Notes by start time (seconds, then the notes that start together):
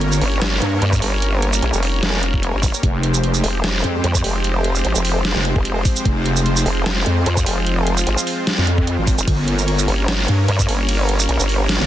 Already playing: G1 G3 A#3 C#4 A#4 C#5
0.01 closed hi-hat
0.12 shaker
0.21 G1, open hi-hat
0.42 snare, closed hi-hat
0.62 G2, closed hi-hat
0.82 G2, closed hi-hat
0.93 kick, shaker
1.02 G1, open hi-hat
1.22 closed hi-hat
1.42 closed hi-hat
1.53 shaker
1.62 A#1, closed hi-hat
1.73 F1, shaker
1.83 open hi-hat
2.03 snare, closed hi-hat
2.23 closed hi-hat
2.34 kick
2.43 closed hi-hat
2.54 G1
2.63 kick, open hi-hat, shaker
2.74 shaker
2.83 F1 F3 G#3 C4 G4 C5, kick, closed hi-hat
3.03 closed hi-hat
3.14 shaker
3.24 closed hi-hat
3.34 shaker
3.44 F1, open hi-hat
3.64 snare, closed hi-hat
3.84 F2, closed hi-hat
4.04 F2, closed hi-hat
4.15 kick, shaker
4.24 F1, open hi-hat
4.44 closed hi-hat
4.64 closed hi-hat
4.75 shaker
4.85 G#1, closed hi-hat
4.96 F1, shaker
5.05 open hi-hat
5.25 snare, closed hi-hat
5.36 F1
5.45 closed hi-hat
5.56 F1, kick
5.65 closed hi-hat
5.85 kick, open hi-hat, shaker
5.96 shaker
6.05 F1 F4, kick, closed hi-hat
6.26 closed hi-hat
6.37 shaker
6.46 closed hi-hat
6.57 shaker
6.66 F1, open hi-hat
6.86 snare, closed hi-hat
7.06 F2, closed hi-hat
7.26 F2, closed hi-hat
7.37 kick, shaker
7.46 F1, open hi-hat
7.67 closed hi-hat
7.87 closed hi-hat
7.98 shaker
8.07 G#1, closed hi-hat
8.18 shaker
8.27 open hi-hat
8.47 snare, closed hi-hat
8.58 F2
8.67 closed hi-hat
8.78 kick
8.87 closed hi-hat
8.98 G#1
9.07 kick, open hi-hat, shaker
9.18 F1, shaker
9.28 G1 G3 A#3 C#4 A#4 C#5, kick, closed hi-hat, ride
9.48 closed hi-hat
9.59 shaker
9.68 closed hi-hat, ride
9.79 shaker
9.88 G1, open hi-hat
10.08 snare, closed hi-hat, ride
10.28 G2, closed hi-hat
10.48 G2, closed hi-hat, ride
10.59 kick, shaker
10.69 G1, open hi-hat
10.89 closed hi-hat, ride
11.09 closed hi-hat
11.20 shaker
11.29 A#1, closed hi-hat, ride
11.40 G1, shaker
11.49 open hi-hat
11.69 snare, closed hi-hat, ride
11.80 G1